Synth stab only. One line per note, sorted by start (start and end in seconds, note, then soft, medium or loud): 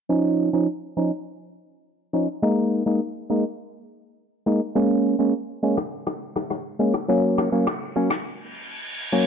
0.09 0.50 F3 medium
0.09 0.50 C#4 medium
0.09 0.50 D#4 loud
0.53 0.67 F3 medium
0.53 0.67 C#4 medium
0.53 0.68 D#4 medium
0.97 1.11 F3 medium
0.97 1.11 C#4 medium
0.97 1.11 D#4 medium
2.13 2.28 F3 medium
2.13 2.28 C#4 medium
2.13 2.28 D#4 medium
2.42 2.83 G#3 medium
2.42 2.83 A#3 medium
2.42 2.83 D#4 loud
2.86 3.00 G#3 medium
2.86 3.01 A#3 medium
2.86 3.01 D#4 medium
3.30 3.44 G#3 medium
3.30 3.44 A#3 medium
3.30 3.44 D#4 medium
4.46 4.61 G#3 medium
4.46 4.61 A#3 medium
4.46 4.61 D#4 medium
4.75 5.16 G#3 medium
4.75 5.16 A#3 medium
4.75 5.16 C#4 loud
5.19 5.33 G#3 medium
5.19 5.33 A#3 medium
5.19 5.34 C#4 medium
5.63 5.77 G#3 medium
5.63 5.77 A#3 medium
5.63 5.77 C#4 medium
6.79 6.94 G#3 medium
6.79 6.94 A#3 medium
6.79 6.94 C#4 medium
7.08 7.49 F#3 medium
7.08 7.49 A#3 medium
7.08 7.49 C#4 loud
7.52 7.66 F#3 medium
7.52 7.66 A#3 medium
7.52 7.67 C#4 medium
7.96 8.10 F#3 medium
7.96 8.10 A#3 medium
7.96 8.10 C#4 medium
9.12 9.27 F#3 medium
9.12 9.27 A#3 medium
9.12 9.27 C#4 medium